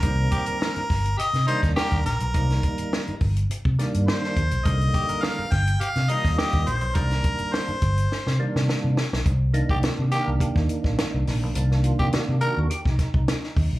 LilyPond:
<<
  \new Staff \with { instrumentName = "Harmonica" } { \time 4/4 \key c \minor \tempo 4 = 104 bes'2 ees''8 c''8 bes'8 bes'8~ | bes'4. r4. c''4 | ees''4 f''8 g''8 f''8 ees''8 ees''8 c''8 | bes'4 c''4. r4. |
r1 | r1 | }
  \new Staff \with { instrumentName = "Tenor saxophone" } { \time 4/4 \key c \minor r8 g'16 bes'16 bes'8 r8 g'16 r16 ees'8 g'8 r8 | r1 | r8 g'16 bes'16 bes'8 r8 g'16 r16 ees'8 g'8 r8 | r1 |
r8. g'16 r8 g'8 r2 | r8. g'16 r8 bes'8 r2 | }
  \new Staff \with { instrumentName = "Tonewheel organ" } { \time 4/4 \key c \minor << { <ees g bes c'>4. r4 <ees g bes d'>4 r8 | <ees g bes ees'>4. r4 <ees g bes d'>4 r8 | <d ees g bes>4. r4 <ees g bes f'>4 r8 | <ees g bes d'>4. r4 <ees g bes d'>4 r8 |
r8 ees'8 \tuplet 3/2 { f'8 g'8 bes'8 g'8 ees'4~ } ees'4 | r8 f'8 \tuplet 3/2 { fis'8 g'8 fis'8 g'8 ees'4~ } ees'4 | } \\ { r1 | r1 | r1 | r1 |
r8 <ees bes d'>2.~ <ees bes d'>8 | <ees bes d'>4. <ees bes d'>8 r2 | } >> }
  \new Staff \with { instrumentName = "Fingered electric bass" } { \clef bass \time 4/4 \key c \minor c,8 r4 g,,8 r16 c16 r16 ees,16 r16 ees,16 bes,,16 b,,16 | c,8 r4 g,,8 r16 c16 r16 g,16 r8 ees,16 b,,16 | c,8 r4 g,,8 r16 c16 r16 ees,16 r16 ees,16 bes,,16 b,,16 | c,8 r4 g,,8 r16 c16 r16 c16 r16 c16 r16 b,,16 |
c,8. c,16 r16 c16 r16 c,16 r16 ees,16 r16 bes,,16 r16 c,16 bes,,16 b,,16 | c,8. c16 r16 c16 r16 ees,16 r16 c,16 r16 c,16 r8 ees,16 b,,16 | }
  \new DrumStaff \with { instrumentName = "Drums" } \drummode { \time 4/4 <hh bd>8 <hh bd>16 hh16 sn16 hh16 <hho bd sn>16 hh16 hh16 <hh sn>16 hh16 <hh bd sn>16 sn16 <hh bd>16 <hh sn>16 hh16 | <hh bd>16 <hh sn>16 <hh bd>16 hh16 sn16 hh16 <hho bd>16 hh16 hh16 bd16 <hh sn>16 hh16 sn16 sn16 <hh bd>16 hh16 | <hh bd>16 hh16 <hh bd>16 hh16 sn8 <hh bd sn>16 hh16 hh16 <hh sn>16 hh16 <hh bd sn>16 sn16 <hh bd>16 hh16 hh16 | <hh bd>16 <hh sn>16 <hh bd>16 hh16 sn16 hh16 <hh bd>16 hh16 sn16 sn8 sn16 sn8 sn16 sn16 |
<hh bd>8 hh16 bd16 <hh sn>8 <hh sn>8 <hh bd>16 <bd sn>16 hh16 <bd sn>16 <hh sn>8 <hho sn>8 | hh16 sn16 hh16 bd16 <hh sn>8 hh8 hh16 <bd sn>16 <hh bd sn>16 bd16 <hh sn>16 sn16 <hho bd>8 | }
>>